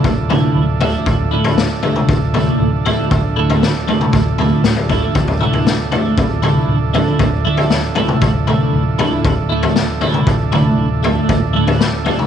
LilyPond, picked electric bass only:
\new Staff \with { instrumentName = "Picked electric bass" } { \clef bass \time 4/4 \key d \minor \tempo 4 = 117 d,,4 d,,4 d,,2 | d,,4 d,,4 d,,2 | d,,4 d,,4 d,,2 | d,,4 d,,4 d,,2 |
d,,4 d,,4 d,,2 | d,,4 d,,4 d,,2 | }